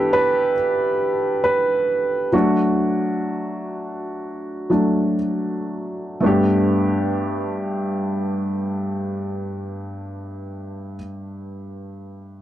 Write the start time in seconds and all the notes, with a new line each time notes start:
Already playing: E3 B3 D4 G4 A4 B4
0.13 B4
1.44 B4
2.32 F#3 A3 D4 F#4
4.70 F#3 A3 D4
6.20 G2 A3 B3 D4
6.26 G4